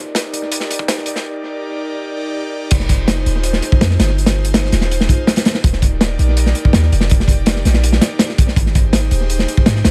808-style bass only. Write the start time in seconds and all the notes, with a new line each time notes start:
Already playing: D#1
0.33 A#1
0.88 D#2
1.07 F1
2.71 F1
3.26 D#1
3.81 F2
3.99 G1
4.72 D#1
5.64 D#1
6.19 A#1
6.74 D#2
6.92 F1
7.65 A#1
8.56 G#1
9.11 D#1
9.66 G#2
9.85 A#1